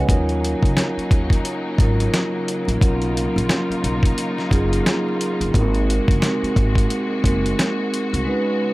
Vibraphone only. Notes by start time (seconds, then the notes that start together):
Already playing: G#3 C#4 D#4 F#4 G#4 A#4 C#5 D#5 F5 F#5 G#5
0.08 F#3 C#4 D#4 F4 A#4
1.79 F#3 C#4 D#4 F4 A#4
2.81 F#3 C#4 D#4 F4 A#4
4.49 F#3 C#4 D#4 F4 G#4
5.53 G#3 C4 D#4 F#4 A#4
6.20 G#3 C4 D#4 F#4 A#4
7.23 G#3 C4 D#4 F#4 A#4
8.25 G#3 C#4 D#4 F#4 B4